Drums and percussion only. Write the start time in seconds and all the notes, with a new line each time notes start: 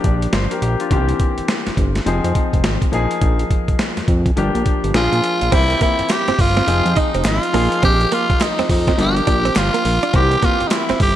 0.04 kick, closed hi-hat
0.22 closed hi-hat
0.33 snare, closed hi-hat
0.51 closed hi-hat
0.62 closed hi-hat
0.80 closed hi-hat
0.91 kick, closed hi-hat
1.09 closed hi-hat
1.20 kick, closed hi-hat
1.38 closed hi-hat
1.48 snare, closed hi-hat
1.67 snare, closed hi-hat
1.77 kick, closed hi-hat
1.95 snare, closed hi-hat
2.06 closed hi-hat
2.24 closed hi-hat
2.35 kick, closed hi-hat
2.53 kick, closed hi-hat
2.64 snare, closed hi-hat
2.82 kick, closed hi-hat
2.93 closed hi-hat
3.11 closed hi-hat
3.21 kick, closed hi-hat
3.39 closed hi-hat
3.51 kick, closed hi-hat
3.68 kick, closed hi-hat
3.79 snare, closed hi-hat
3.97 snare, closed hi-hat
4.08 kick, closed hi-hat
4.26 kick, closed hi-hat
4.37 closed hi-hat
4.55 closed hi-hat
4.66 kick, closed hi-hat
4.84 closed hi-hat
4.94 snare, closed hi-hat
5.13 closed hi-hat
5.24 closed hi-hat
5.41 closed hi-hat
5.52 kick, closed hi-hat, crash
5.70 closed hi-hat
5.81 kick, closed hi-hat, tambourine
5.99 closed hi-hat
6.10 snare, clap, closed hi-hat, tambourine
6.28 snare, closed hi-hat
6.39 kick, open hi-hat, tambourine
6.57 snare, closed hi-hat
6.68 closed hi-hat, tambourine
6.86 closed hi-hat
6.96 kick, closed hi-hat, tambourine
7.14 closed hi-hat
7.25 snare, clap, closed hi-hat, tambourine
7.43 closed hi-hat
7.54 open hi-hat, tambourine
7.72 closed hi-hat
7.83 kick, closed hi-hat
8.01 closed hi-hat
8.12 closed hi-hat, tambourine
8.30 kick, closed hi-hat
8.41 snare, clap, closed hi-hat, tambourine
8.59 snare, closed hi-hat
8.69 kick, open hi-hat, tambourine
8.87 kick, snare, closed hi-hat
8.99 closed hi-hat, tambourine
9.16 closed hi-hat
9.27 kick, closed hi-hat, tambourine
9.45 closed hi-hat
9.56 snare, clap, closed hi-hat, tambourine
9.74 closed hi-hat
9.85 open hi-hat, tambourine
10.03 closed hi-hat
10.14 kick, closed hi-hat
10.31 closed hi-hat
10.42 kick, closed hi-hat, tambourine
10.60 closed hi-hat
10.71 snare, clap, closed hi-hat, tambourine
10.89 snare, closed hi-hat
11.00 kick, open hi-hat, tambourine